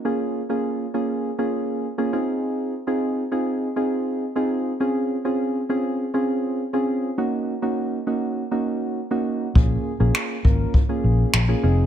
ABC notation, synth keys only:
X:1
M:4/4
L:1/16
Q:1/4=101
K:Bbm
V:1 name="Synth keys"
[B,DFA]2 z [B,DFA]2 z [B,DFA]2 z [B,DFA]3 z [B,DFA] [CEFA]2- | [CEFA]2 z [CEFA]2 z [CEFA]2 z [CEFA]3 z [CEFA]2 z | [CDFA]2 z [CDFA]2 z [CDFA]2 z [CDFA]3 z [CDFA]2 z | [B,DEG]2 z [B,DEG]2 z [B,DEG]2 z [B,DEG]3 z [B,DEG]2 z |
[B,DFA]2 z [B,DFA]2 z [B,DFB]2 z [B,DFA]3 z [B,DFA] [CEFA]2 |]